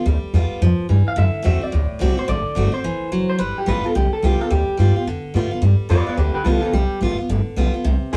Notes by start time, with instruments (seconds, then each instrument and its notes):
0.06 upright bass D2, steel-string acoustic guitar G3
0.23 muted upright bass stroke
0.33 upright bass E2, steel-string acoustic guitar G3 B3 F4
0.51 muted upright bass stroke
0.62 upright bass F2, steel-string acoustic guitar F3
0.79 muted upright bass stroke
0.89 upright bass G2, steel-string acoustic guitar E3
1.07 clean electric guitar F5, muted upright bass stroke
1.16 upright bass F#2, steel-string acoustic guitar D3, clean electric guitar E5
1.35 muted upright bass stroke
1.42 upright bass E2, steel-string acoustic guitar D3 A3 C4 F#4, clean electric guitar E5
1.61 steel-string acoustic guitar C4 F#4, clean electric guitar D5, muted upright bass stroke
1.72 upright bass D2, steel-string acoustic guitar A2
1.91 muted upright bass stroke
1.99 upright bass C2, steel-string acoustic guitar D3 A3 C4 F#4
2.17 steel-string acoustic guitar C4 F#4, clean electric guitar C5
2.28 upright bass A1, steel-string acoustic guitar D3, clean electric guitar D5
2.46 muted upright bass stroke
2.55 upright bass G1, steel-string acoustic guitar D3 A3 C4 F#4
2.72 steel-string acoustic guitar C4 F#4, clean electric guitar C5
2.84 upright bass A1, steel-string acoustic guitar E3
3.02 muted upright bass stroke
3.12 upright bass F#1, steel-string acoustic guitar F#3
3.30 clean electric guitar C5
3.39 upright bass G1, steel-string acoustic guitar G3, clean electric guitar B4
3.58 clean electric guitar G4
3.66 upright bass A1, steel-string acoustic guitar G3 B3 F4, clean electric guitar B4
3.84 steel-string acoustic guitar B3 F4, clean electric guitar A4, muted upright bass stroke
3.95 upright bass B1, steel-string acoustic guitar D3, clean electric guitar G4
4.13 clean electric guitar A4, muted upright bass stroke
4.23 upright bass C2, steel-string acoustic guitar G3 B3 F4, clean electric guitar G4
4.41 steel-string acoustic guitar B3 F4, clean electric guitar A4
4.50 upright bass D2, steel-string acoustic guitar G3, clean electric guitar G4
4.68 muted upright bass stroke
4.77 upright bass G2, steel-string acoustic guitar G3 B3 F4
4.96 steel-string acoustic guitar B3 F4, muted upright bass stroke
5.07 upright bass F2, steel-string acoustic guitar D3
5.24 muted upright bass stroke
5.34 upright bass A2, steel-string acoustic guitar G3 B3 F4
5.51 steel-string acoustic guitar B3 F4, muted upright bass stroke
5.62 upright bass G2, steel-string acoustic guitar G3
5.80 muted upright bass stroke
5.89 upright bass F2, steel-string acoustic guitar G3 B3 F4, clean electric guitar B4 D5
6.07 steel-string acoustic guitar B3 F4, clean electric guitar B4 D5, muted upright bass stroke
6.17 upright bass D2, steel-string acoustic guitar D3, clean electric guitar G4 B4
6.34 clean electric guitar G4 B4, muted upright bass stroke
6.44 upright bass C2, steel-string acoustic guitar G3 B3 F4, clean electric guitar F4 A4
6.60 clean electric guitar F4 A4, steel-string acoustic guitar F4, muted upright bass stroke
6.65 steel-string acoustic guitar B3
6.72 upright bass B1, steel-string acoustic guitar G3, clean electric guitar G4
6.90 muted upright bass stroke
7.01 upright bass A1, steel-string acoustic guitar G3 B3 F4
7.18 steel-string acoustic guitar B3 F4, muted upright bass stroke
7.29 upright bass G1, steel-string acoustic guitar D3
7.46 muted upright bass stroke
7.56 upright bass B1, steel-string acoustic guitar G3 B3 F4
7.74 steel-string acoustic guitar B3 F4
7.84 upright bass C2, steel-string acoustic guitar C3
8.02 muted upright bass stroke
8.13 upright bass D2, steel-string acoustic guitar E3 A#3 C4, clean electric guitar A#4 D5